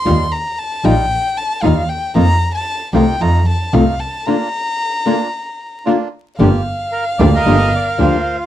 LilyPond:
<<
  \new Staff \with { instrumentName = "Violin" } { \time 4/4 \key bes \major \tempo 4 = 114 c'''8 bes''8 a''8 g''4 a''8 f''8 g''8 | bes''8. a''8. g''8 bes''8 a''8 f''8 a''8 | bes''2. r4 | \key g \minor f''1 | }
  \new Staff \with { instrumentName = "Bandoneon" } { \time 4/4 \key bes \major << { r1 | r1 | r1 | \key g \minor r4 bes'8 d''16 ees''8. d''8 c''8. r16 | } \\ { r1 | r1 | r1 | r4. r16 bes'4~ bes'16 f'4 | } >> }
  \new Staff \with { instrumentName = "Bandoneon" } { \time 4/4 \key bes \major <g ees' f'>8 r4 <g ees' f'>8 r4 <g ees' f'>8 r8 | <bes ees' f'>8 r4 <bes ees' f'>8 <a ees' f'>8 r8 <a ees' f'>8 r8 | <bes d' f'>8 r4 <bes d' f'>8 r4 <bes d' f'>8 r8 | \key g \minor <bes f' g'>8 r4 <bes f' g'>8 <bes f' g'>8 r8 <bes f' g'>8 r8 | }
  \new Staff \with { instrumentName = "Nylon-string guitar" } { \time 4/4 \key bes \major <ees g ees' f'>8 r4 <ees g ees' f'>8 r4 <ees g ees' f'>8 r8 | <ees bes c' f'>8 r4 <c ees a c' f'>8 r4 <c ees a c' f'>8 r8 | <d bes d' f'>8 r4 <d bes d' f'>8 r4 <d bes d' f'>8 r8 | \key g \minor <d f bes d' g'>8 r4 <d f bes d' g'>8 <d f bes d' g'>8 r8 <d f bes d' g'>8 r8 | }
  \new Staff \with { instrumentName = "Double bass" } { \clef bass \time 4/4 \key bes \major ees,8 r4 bes,,8 r4 ees,8 r8 | f,8 r4 c,8 f,8 r8 c,8 r8 | r1 | \key g \minor g,,8 r4 d,8 g,,8 r8 d,8 r8 | }
>>